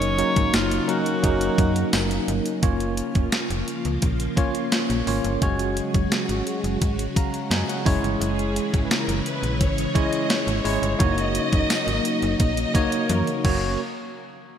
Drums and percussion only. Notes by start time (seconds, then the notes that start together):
0.02 closed hi-hat
0.19 closed hi-hat
0.36 kick, closed hi-hat
0.54 snare, closed hi-hat, tambourine
0.71 closed hi-hat
0.89 closed hi-hat
1.06 closed hi-hat
1.24 kick, closed hi-hat
1.41 closed hi-hat
1.58 kick, closed hi-hat
1.76 closed hi-hat
1.93 snare, closed hi-hat, tambourine
2.11 closed hi-hat
2.28 closed hi-hat
2.46 closed hi-hat
2.63 kick, closed hi-hat
2.80 closed hi-hat
2.97 closed hi-hat
3.15 kick, closed hi-hat
3.32 snare, closed hi-hat
3.50 closed hi-hat
3.68 closed hi-hat
3.85 closed hi-hat
4.02 kick, closed hi-hat
4.20 closed hi-hat
4.37 kick, closed hi-hat
4.55 closed hi-hat
4.72 snare, closed hi-hat
4.90 closed hi-hat
5.07 open hi-hat
5.24 closed hi-hat
5.42 kick, closed hi-hat
5.59 closed hi-hat
5.77 closed hi-hat
5.94 kick, closed hi-hat
6.12 snare, closed hi-hat
6.29 closed hi-hat
6.47 closed hi-hat
6.64 closed hi-hat
6.82 kick, closed hi-hat
6.99 closed hi-hat
7.16 kick, closed hi-hat
7.34 closed hi-hat
7.51 snare, closed hi-hat
7.69 closed hi-hat
7.86 kick, open hi-hat
8.04 closed hi-hat
8.22 closed hi-hat
8.39 closed hi-hat
8.56 closed hi-hat
8.74 kick, closed hi-hat
8.91 snare, closed hi-hat
9.09 closed hi-hat
9.26 closed hi-hat
9.43 closed hi-hat
9.61 kick, closed hi-hat
9.78 closed hi-hat
9.95 kick, closed hi-hat
10.13 closed hi-hat
10.30 snare, closed hi-hat
10.48 closed hi-hat
10.65 open hi-hat
10.83 closed hi-hat
11.00 kick, closed hi-hat
11.18 closed hi-hat
11.35 closed hi-hat
11.53 kick, closed hi-hat
11.70 snare, closed hi-hat, tambourine
11.88 closed hi-hat
12.05 closed hi-hat
12.22 closed hi-hat
12.40 kick, closed hi-hat
12.57 closed hi-hat
12.75 kick, closed hi-hat
12.92 closed hi-hat
13.09 closed hi-hat, high tom
13.27 closed hi-hat
13.45 kick, crash